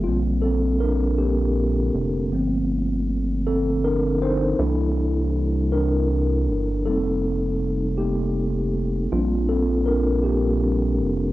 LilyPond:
<<
  \new Staff \with { instrumentName = "Tine electric piano" } { \time 6/8 \key bes \major \tempo 4. = 53 <bes f'>8 <c' a'>8 <d' bes'>8 <bes g'>4 r8 | r4. <c' a'>8 <d' bes'>8 <ees' c''>8 | <g e'>4 r8 <d' bes'>4. | <c' a'>4. <bes g'>4. |
<bes f'>8 <c' a'>8 <d' bes'>8 <bes g'>4 r8 | }
  \new Staff \with { instrumentName = "Tine electric piano" } { \time 6/8 \key bes \major <d g c'>2. | <f a bes c'>8 r2 r8 | <e bes d' a'>2. | <g bes ees'>8 r2 r8 |
<g c' d'>2 <g c' d'>8 r8 | }
  \new Staff \with { instrumentName = "Analog synth bass" } { \clef bass \time 6/8 \key bes \major bes,,2~ bes,,8 f,,8 | g,,2. | c,2~ c,8 g,,8 | f,,2. |
bes,,2~ bes,,8 f,,8 | }
>>